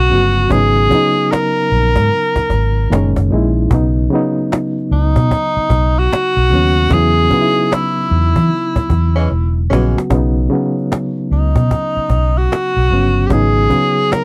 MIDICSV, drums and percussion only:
0, 0, Header, 1, 2, 480
1, 0, Start_track
1, 0, Key_signature, 5, "major"
1, 0, Tempo, 800000
1, 302, Time_signature, 4, 2, 24, 8
1, 8545, End_track
2, 0, Start_track
2, 0, Title_t, "Cajon"
2, 303, Note_on_c, 9, 36, 125
2, 363, Note_off_c, 9, 36, 0
2, 545, Note_on_c, 9, 36, 94
2, 605, Note_off_c, 9, 36, 0
2, 710, Note_on_c, 9, 38, 41
2, 770, Note_off_c, 9, 38, 0
2, 794, Note_on_c, 9, 38, 87
2, 799, Note_off_c, 9, 38, 0
2, 799, Note_on_c, 9, 38, 105
2, 859, Note_off_c, 9, 38, 0
2, 952, Note_on_c, 9, 38, 34
2, 1012, Note_off_c, 9, 38, 0
2, 1174, Note_on_c, 9, 36, 96
2, 1234, Note_off_c, 9, 36, 0
2, 1266, Note_on_c, 9, 38, 48
2, 1326, Note_off_c, 9, 38, 0
2, 1414, Note_on_c, 9, 36, 87
2, 1431, Note_on_c, 9, 38, 36
2, 1474, Note_off_c, 9, 36, 0
2, 1491, Note_off_c, 9, 38, 0
2, 1499, Note_on_c, 9, 36, 77
2, 1559, Note_off_c, 9, 36, 0
2, 1754, Note_on_c, 9, 38, 80
2, 1759, Note_off_c, 9, 38, 0
2, 1759, Note_on_c, 9, 38, 100
2, 1819, Note_off_c, 9, 38, 0
2, 1898, Note_on_c, 9, 36, 94
2, 1958, Note_off_c, 9, 36, 0
2, 1994, Note_on_c, 9, 38, 41
2, 2054, Note_off_c, 9, 38, 0
2, 2224, Note_on_c, 9, 36, 120
2, 2284, Note_off_c, 9, 36, 0
2, 2464, Note_on_c, 9, 38, 39
2, 2524, Note_off_c, 9, 38, 0
2, 2632, Note_on_c, 9, 38, 42
2, 2692, Note_off_c, 9, 38, 0
2, 2713, Note_on_c, 9, 38, 84
2, 2718, Note_off_c, 9, 38, 0
2, 2718, Note_on_c, 9, 38, 110
2, 2778, Note_off_c, 9, 38, 0
2, 2871, Note_on_c, 9, 38, 34
2, 2931, Note_off_c, 9, 38, 0
2, 2947, Note_on_c, 9, 38, 36
2, 3007, Note_off_c, 9, 38, 0
2, 3095, Note_on_c, 9, 36, 95
2, 3155, Note_off_c, 9, 36, 0
2, 3187, Note_on_c, 9, 36, 100
2, 3247, Note_off_c, 9, 36, 0
2, 3354, Note_on_c, 9, 38, 37
2, 3414, Note_off_c, 9, 38, 0
2, 3419, Note_on_c, 9, 36, 86
2, 3479, Note_off_c, 9, 36, 0
2, 3675, Note_on_c, 9, 38, 91
2, 3680, Note_off_c, 9, 38, 0
2, 3680, Note_on_c, 9, 38, 114
2, 3740, Note_off_c, 9, 38, 0
2, 4143, Note_on_c, 9, 36, 121
2, 4203, Note_off_c, 9, 36, 0
2, 4384, Note_on_c, 9, 36, 88
2, 4444, Note_off_c, 9, 36, 0
2, 4539, Note_on_c, 9, 38, 26
2, 4548, Note_off_c, 9, 38, 0
2, 4548, Note_on_c, 9, 38, 42
2, 4608, Note_off_c, 9, 38, 0
2, 4631, Note_on_c, 9, 38, 80
2, 4636, Note_off_c, 9, 38, 0
2, 4636, Note_on_c, 9, 38, 111
2, 4696, Note_off_c, 9, 38, 0
2, 4789, Note_on_c, 9, 38, 30
2, 4849, Note_off_c, 9, 38, 0
2, 4865, Note_on_c, 9, 38, 35
2, 4925, Note_off_c, 9, 38, 0
2, 5015, Note_on_c, 9, 36, 87
2, 5075, Note_off_c, 9, 36, 0
2, 5106, Note_on_c, 9, 38, 50
2, 5166, Note_off_c, 9, 38, 0
2, 5255, Note_on_c, 9, 36, 98
2, 5315, Note_off_c, 9, 36, 0
2, 5338, Note_on_c, 9, 36, 78
2, 5398, Note_off_c, 9, 36, 0
2, 5577, Note_on_c, 9, 38, 51
2, 5637, Note_off_c, 9, 38, 0
2, 5744, Note_on_c, 9, 38, 28
2, 5804, Note_off_c, 9, 38, 0
2, 5837, Note_on_c, 9, 38, 92
2, 5897, Note_off_c, 9, 38, 0
2, 5989, Note_on_c, 9, 38, 88
2, 6049, Note_off_c, 9, 38, 0
2, 6063, Note_on_c, 9, 36, 127
2, 6123, Note_off_c, 9, 36, 0
2, 6302, Note_on_c, 9, 38, 41
2, 6362, Note_off_c, 9, 38, 0
2, 6469, Note_on_c, 9, 38, 42
2, 6529, Note_off_c, 9, 38, 0
2, 6551, Note_on_c, 9, 38, 88
2, 6555, Note_off_c, 9, 38, 0
2, 6555, Note_on_c, 9, 38, 110
2, 6615, Note_off_c, 9, 38, 0
2, 6708, Note_on_c, 9, 38, 29
2, 6768, Note_off_c, 9, 38, 0
2, 6785, Note_on_c, 9, 38, 34
2, 6845, Note_off_c, 9, 38, 0
2, 6933, Note_on_c, 9, 36, 85
2, 6993, Note_off_c, 9, 36, 0
2, 7026, Note_on_c, 9, 36, 101
2, 7086, Note_off_c, 9, 36, 0
2, 7257, Note_on_c, 9, 36, 83
2, 7317, Note_off_c, 9, 36, 0
2, 7512, Note_on_c, 9, 38, 83
2, 7517, Note_off_c, 9, 38, 0
2, 7517, Note_on_c, 9, 38, 97
2, 7577, Note_off_c, 9, 38, 0
2, 7982, Note_on_c, 9, 36, 116
2, 8042, Note_off_c, 9, 36, 0
2, 8223, Note_on_c, 9, 36, 86
2, 8283, Note_off_c, 9, 36, 0
2, 8389, Note_on_c, 9, 38, 41
2, 8449, Note_off_c, 9, 38, 0
2, 8471, Note_on_c, 9, 38, 85
2, 8476, Note_off_c, 9, 38, 0
2, 8476, Note_on_c, 9, 38, 105
2, 8536, Note_off_c, 9, 38, 0
2, 8545, End_track
0, 0, End_of_file